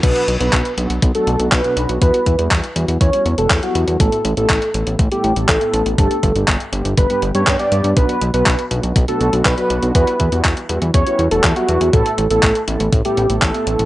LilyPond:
<<
  \new Staff \with { instrumentName = "Analog synth lead" } { \time 4/4 \key b \minor \tempo 4 = 121 b'8. b'8. r8. a'8. b'8. r16 | b'8. r4 r16 cis''8. a'8 fis'8. | a'8. a'8. r8. g'8. a'8. r16 | a'8. r4 r16 b'8. cis''8 d''8. |
b'8. b'8. r8. a'8. b'8. r16 | b'8. r4 r16 cis''8. a'8 fis'8. | a'8. a'8. r8. g'8. a'8. r16 | }
  \new Staff \with { instrumentName = "Analog polysynth" } { \time 4/4 \key b \minor <b, fis b d' fis'>16 r8 <b, fis b d' fis'>16 r8 <b, fis b d' fis'>16 r8 <b, fis b d' fis'>16 r16 <b, fis b d' fis'>16 r16 <b, fis b d' fis'>8. | <g b e' fis'>16 r8 <g b e' fis'>16 r8 <g b e' fis'>16 r8 <g b e' fis'>16 r16 <g b e' fis'>16 r16 <g b e' fis'>8. | <a, a b e' a'>16 r8 <a, a b e' a'>16 r8 <a, a b e' a'>16 r8 <a, a b e' a'>16 r16 <a, a b e' a'>16 r16 <a, a b e' a'>8. | <g, g b d' g'>16 r8 <g, g b d' g'>16 r8 <g, g b d' g'>16 r8 <g, g b d' g'>16 r16 <g, g b d' g'>16 r16 <g, g b d' g'>8. |
<b, fis b d' fis'>16 r8 <b, fis b d' fis'>16 r8 <b, fis b d' fis'>16 r8 <b, fis b d' fis'>16 r16 <b, fis b d' fis'>16 r16 <b, fis b d' fis'>8. | <g b e' fis'>16 r8 <g b e' fis'>16 r8 <g b e' fis'>16 r8 <g b e' fis'>16 r16 <g b e' fis'>16 r16 <g b e' fis'>8. | <a, a b e' a'>16 r8 <a, a b e' a'>16 r8 <a, a b e' a'>16 r8 <a, a b e' a'>16 r16 <a, a b e' a'>16 r16 <a, a b e' a'>8. | }
  \new Staff \with { instrumentName = "Analog synth bass" } { \clef bass \time 4/4 \key b \minor b,,16 r16 b,,16 b,,16 b,,16 r16 b,,16 b,,16 b,,16 r16 b,,16 b,,16 b,,16 r16 b,,16 b,,16 | e,16 r16 e,16 e,16 e,16 r16 e,16 e,16 e,16 r16 e,16 e,,16 e,16 r16 e,16 e,16 | a,,16 r16 a,,16 a,,16 a,,16 r16 a,,16 a,,16 a,,16 r16 a,,16 a,,16 a,,16 r16 a,,16 a,,16 | g,,16 r16 g,,16 g,,16 g,,16 r16 g,,16 g,,16 g,,16 r16 g,,16 g,16 g,16 r16 g,16 g,16 |
b,,16 r16 b,,16 b,,16 b,,16 r16 b,,16 b,,16 b,,16 r16 b,,16 b,,16 b,,16 r16 b,,16 b,,16 | e,16 r16 e,16 e,16 e,16 r16 e,16 e,16 e,16 r16 e,16 e,,16 e,16 r16 e,16 e,16 | a,,16 r16 a,,16 a,,16 a,,16 r16 a,,16 a,,16 a,,16 r16 a,,16 a,,16 a,,16 r16 a,,16 a,,16 | }
  \new DrumStaff \with { instrumentName = "Drums" } \drummode { \time 4/4 <cymc hh bd>16 hh16 hh16 hh16 <hc hh bd>16 hh16 hh16 hh16 <hh bd>16 hh16 hh16 hh16 <hc hh bd>16 hh16 hh16 hh16 | <hh bd>16 hh16 <hh bd>16 hh16 <hc hh bd>16 hh16 hh16 hh16 <hh bd>16 hh16 hh16 hh16 <hc hh bd>16 hh16 hh16 hh16 | <hh bd>16 hh16 hh16 hh16 <hc hh bd>16 hh16 hh16 hh16 <hh bd>16 hh16 hh16 hh16 <hc hh bd>16 hh16 hh16 hh16 | <hh bd>16 hh16 <hh bd>16 hh16 <hc hh bd>16 hh16 hh16 hh16 <hh bd>16 hh16 hh16 hh16 <hc hh bd>16 hh16 hh16 hh16 |
<hh bd>16 hh16 hh16 hh16 <hc hh bd>16 hh16 hh16 hh16 <hh bd>16 hh16 hh16 hh16 <hc hh bd>16 hh16 hh16 hh16 | <hh bd>16 hh16 <hh bd>16 hh16 <hc hh bd>16 hh16 hh16 hh16 <hh bd>16 hh16 hh16 hh16 <hc hh bd>16 hh16 hh16 hh16 | <hh bd>16 hh16 hh16 hh16 <hc hh bd>16 hh16 hh16 hh16 <hh bd>16 hh16 hh16 hh16 <hc hh bd>16 hh16 hh16 hh16 | }
>>